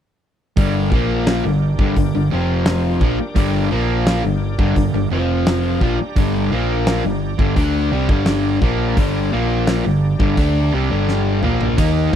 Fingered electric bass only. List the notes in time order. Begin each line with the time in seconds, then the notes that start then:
0.57 G1
0.92 A#1
1.45 G1
1.79 G1
1.96 G1
2.15 G1
2.33 F1
3.02 A#1
3.21 muted fingered electric bass stroke
3.37 G1
3.72 A#1
4.24 G1
4.59 G1
4.77 G1
4.94 G1
5.11 F1
5.81 A#1
5.99 muted fingered electric bass stroke
6.17 G1
6.52 A#1
7.04 G1
7.39 G1
7.57 D2
7.92 C2
8.09 G1
8.62 A#1
8.97 G1
9.33 A#1
9.86 G1
10.20 G1
10.37 D2
10.74 C2
10.92 G1
11.45 A#1
11.78 D#2